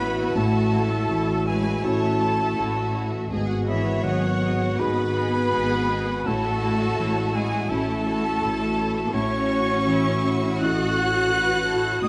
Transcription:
Already playing: A1 A2 E3 B3 C#4 E4 F#4 B4 B5
0.00 F#4 C#5
0.18 E4 E5
0.34 A1 A2 A3 E4 A4 C#5 A5
0.53 F#4 E5
0.73 E4 C#5
0.92 F#4 E5
1.09 A1 E3 E4 A4 C#5
1.29 F#4 E5
1.47 G#3 E4 G#4 B4 C#5 G#5
1.65 F#4 E5
1.83 A1 A3 C#4 E4 F#4 A4 C#5 A5
2.03 F#4 E5
2.21 E4 A4 C#5
2.41 F#4 E5
2.58 A1 E4 F#4 C#5
2.76 F#4 E5
2.94 E4 C#5
3.12 F#4 E5
3.30 G#1 G#2 B3 F#4 G#4 D#5
3.48 F#4 F#5
3.66 E3 E4 G#4 C#5 D#5 E5
3.85 F#4 F#5
4.03 G#1 D#3 F#3 F#4 G#4 D#5 F#5
4.22 F#4 F#5
4.41 G#4 D#5
4.60 F#4 F#5
4.78 G#1 B3 D#4 F#4 G#4 B4 D#5 B5
4.97 F#4 F#5
5.16 G#4 D#5
5.35 F#4 F#5
5.52 G#4 D#5
5.56 G#1
5.71 F#4 F#5
5.90 G#4 D#5
6.08 F#4 F#5
6.25 A1 A2 A3 E4 F#4 A4 C#5 A5
6.45 F#4 E5
6.62 E4 C#5
6.79 F#4 E5
6.98 A1 E3 E4 C#5
7.17 F#4 E5
7.34 G#3 E4 G#4 C#5 G#5
7.52 F#4 E5
7.69 A1 A3 C#4 E4 F#4 A4 C#5 A5
7.89 F#4 E5
8.06 E4 F#4 C#5
8.24 F#4 E5
8.42 A1 E4 A4 C#5
8.60 F#4 E5
8.77 E4 C#5
8.95 F#4 E5
9.12 A1 A2 C#4 E4 F#4 C#5 C#6
9.49 F#4
9.86 E3 E4 E5
10.23 F#4
10.59 C#4 E4 F#4 A4 D#5 F#5 F#6
10.98 C#5
11.31 F#4 B4
11.68 E4 A4
12.02 A1 A2 E3 D#4 F#4 D#5 D#6

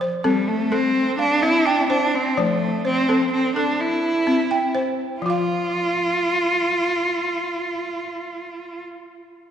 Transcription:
0.01 C5
0.24 G3 C4 A4
0.47 A3
0.72 C4 A4
1.18 D4 F5
1.42 C4 E4
1.65 D4 G5
1.90 D4 C5
2.15 C4
2.37 F3 A3 C5
2.85 C4 C5
3.09 C4 A4
3.33 C4
3.56 D4 A4
3.80 E4
4.27 C4
4.51 G5
4.75 C5
5.21 F3 F4
5.26 F4
5.30 F5

